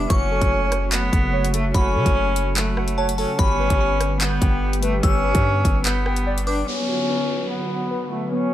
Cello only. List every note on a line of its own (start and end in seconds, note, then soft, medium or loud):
0.10 0.88 C#4 loud
0.92 1.50 B3 medium
1.54 1.71 A3 loud
1.75 2.53 C#4 loud
2.57 3.15 A3 medium
3.18 3.35 C#4 medium
3.39 4.17 C#4 loud
4.21 4.79 B3 medium
4.83 5.00 A3 medium
5.03 5.81 C#4 loud
5.85 6.43 B3 medium
6.47 6.64 D4 medium
6.68 7.46 C#4 loud
7.50 8.08 B3 medium
8.11 8.28 A3 medium
8.32 8.54 C#4 loud